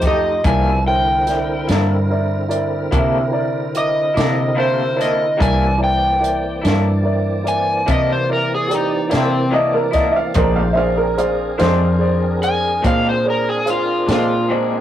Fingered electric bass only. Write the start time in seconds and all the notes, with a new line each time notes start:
Already playing: F2
0.45 C2
1.69 G2
2.93 C3
4.17 C3
5.41 C2
6.65 G2
7.88 C3
9.14 C3
10.36 A#1
11.61 F2
12.85 A#2
14.09 A#2